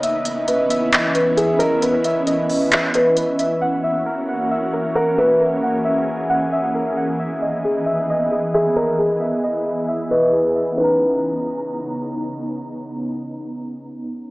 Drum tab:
HH |xxxxxxxx|xxxoxxxx|--------|--------|
CP |----x---|----x---|--------|--------|

HH |--------|--------|--------|--------|
CP |--------|--------|--------|--------|